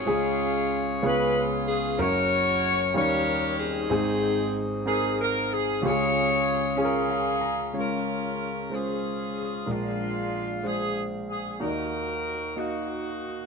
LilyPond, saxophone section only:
\new Staff \with { instrumentName = "Saxophone section" } { \time 6/8 \key des \major \tempo 4. = 62 << { des''4. ces''8 r8 aes'8 | des''4. des''4 aes'8~ | aes'4. aes'8 bes'8 aes'8 | des''4. aes'4. |
bes'4. aes'4. | f'4. aes'8 r8 aes'8 | bes'4. ges'4. | } \\ { <f' aes'>4. <f' aes'>4. | <ges' bes'>4. <g' bes'>4 <c' ees'>8~ | <c' ees'>4. r4. | <f' aes'>4. <des' f'>4. |
<des' f'>4. <des' f'>4. | <aes d'>4. r4. | <ees' ges'>4. <bes ees'>4. | } >> }